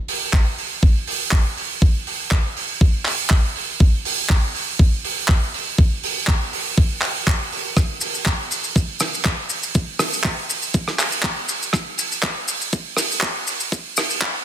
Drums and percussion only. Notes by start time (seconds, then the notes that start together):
0.08 open hi-hat
0.33 kick, clap
0.58 open hi-hat
0.83 kick
1.07 open hi-hat
1.31 kick, clap
1.57 open hi-hat
1.82 kick
2.07 open hi-hat
2.31 kick, clap
2.57 open hi-hat
2.81 kick
3.05 clap, open hi-hat
3.30 kick, clap
3.56 open hi-hat
3.80 kick
4.05 open hi-hat
4.30 kick, clap
4.55 open hi-hat
4.79 kick
5.04 open hi-hat
5.28 kick, clap
5.54 open hi-hat
5.78 kick
6.03 open hi-hat
6.27 kick, clap
6.53 open hi-hat
6.78 kick
7.02 clap, open hi-hat
7.27 kick, clap
7.52 open hi-hat
7.77 kick, cross-stick, shaker
8.01 open hi-hat, shaker
8.15 shaker
8.26 kick, clap, shaker
8.51 open hi-hat, shaker
8.64 shaker
8.76 kick, shaker
9.00 cross-stick, open hi-hat, shaker
9.14 shaker
9.25 kick, clap, shaker
9.50 open hi-hat, shaker
9.63 shaker
9.74 kick, shaker
9.99 cross-stick, open hi-hat, shaker
10.13 shaker
10.24 kick, clap, shaker
10.50 open hi-hat, shaker
10.62 shaker
10.74 kick, shaker
10.88 cross-stick
10.99 clap, open hi-hat, shaker
11.12 shaker
11.23 kick, clap, shaker
11.49 open hi-hat, shaker
11.62 shaker
11.73 kick, cross-stick, shaker
11.98 open hi-hat, shaker
12.12 shaker
12.23 kick, clap, shaker
12.48 open hi-hat, shaker
12.61 shaker
12.73 kick, shaker
12.97 cross-stick, open hi-hat, shaker
13.12 shaker
13.21 kick, clap, shaker
13.47 open hi-hat, shaker
13.60 shaker
13.72 kick, shaker
13.97 cross-stick, open hi-hat, shaker
14.10 shaker
14.22 kick, clap, shaker